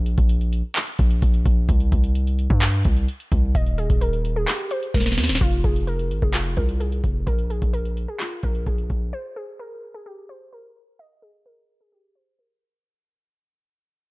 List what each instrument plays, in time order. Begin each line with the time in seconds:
Already playing: 808-style bass A#1
0.06 closed hi-hat
0.18 808-style bass A#1, kick, closed hi-hat
0.29 closed hi-hat
0.41 closed hi-hat
0.53 closed hi-hat
0.76 clap, closed hi-hat
0.87 closed hi-hat
0.98 808-style bass A#1, kick, closed hi-hat
1.10 closed hi-hat
1.22 808-style bass A#1, kick, closed hi-hat
1.34 closed hi-hat
1.45 808-style bass A#1, kick, closed hi-hat
1.69 808-style bass C2, kick, closed hi-hat
1.80 closed hi-hat
1.92 808-style bass C2, kick, closed hi-hat
2.04 closed hi-hat
2.15 closed hi-hat
2.27 closed hi-hat
2.39 closed hi-hat
2.50 808-style bass G2, kick
2.62 clap, closed hi-hat
2.73 closed hi-hat
2.85 808-style bass C2, kick, closed hi-hat
2.97 closed hi-hat
3.08 closed hi-hat
3.20 closed hi-hat
3.32 808-style bass C2, kick, closed hi-hat
3.55 808-style bass D#1, synth pluck D#5, kick, closed hi-hat
3.66 closed hi-hat
3.78 synth pluck G#4, closed hi-hat
3.90 808-style bass D#1, kick, closed hi-hat
4.01 synth pluck A#4, closed hi-hat
4.13 closed hi-hat
4.25 closed hi-hat
4.36 synth pluck G#4
4.48 synth pluck G4, clap, closed hi-hat
4.59 closed hi-hat
4.71 synth pluck C5, closed hi-hat
4.83 closed hi-hat
4.94 808-style bass D#1, synth pluck A#4, kick, snare, closed hi-hat
5.00 snare
5.06 snare, closed hi-hat
5.12 snare
5.18 808-style bass D#2, snare, closed hi-hat
5.23 snare
5.29 808-style bass D#1, snare
5.35 snare
5.41 808-style bass F1, synth pluck F4, kick, closed hi-hat
5.52 closed hi-hat
5.64 808-style bass F1, synth pluck G#4, kick, closed hi-hat
5.76 closed hi-hat
5.87 synth pluck A#4, closed hi-hat
5.99 closed hi-hat
6.11 808-style bass G#1, closed hi-hat
6.22 808-style bass F1, synth pluck G#4, kick
6.34 synth pluck F4, clap, closed hi-hat
6.45 closed hi-hat
6.57 808-style bass C2, synth pluck A#4, kick, closed hi-hat
6.69 closed hi-hat
6.80 synth pluck G#4, closed hi-hat
6.92 closed hi-hat
7.04 808-style bass F1, kick, closed hi-hat
7.27 808-style bass A#1, synth pluck A#4, kick, closed hi-hat
7.39 closed hi-hat
7.50 synth pluck G#4, closed hi-hat
7.62 808-style bass A#1, kick, closed hi-hat
7.73 synth pluck A#4, closed hi-hat
7.85 closed hi-hat
7.97 closed hi-hat
8.08 synth pluck G#4
8.20 synth pluck F4, clap, closed hi-hat
8.31 closed hi-hat
8.43 808-style bass A#1, synth pluck A#4, kick, closed hi-hat
8.55 closed hi-hat
8.66 808-style bass A#1, synth pluck G#4, kick, closed hi-hat
8.78 closed hi-hat
8.90 808-style bass A#1, kick, closed hi-hat
9.13 synth pluck C5
9.36 synth pluck G#4
9.59 synth pluck A#4
9.94 synth pluck G#4
10.06 synth pluck G4
10.29 synth pluck C5
10.53 synth pluck A#4
10.99 synth pluck D#5
11.22 synth pluck G#4
11.46 synth pluck A#4
11.81 synth pluck G#4
11.92 synth pluck G4
12.15 synth pluck C5
12.39 synth pluck A#4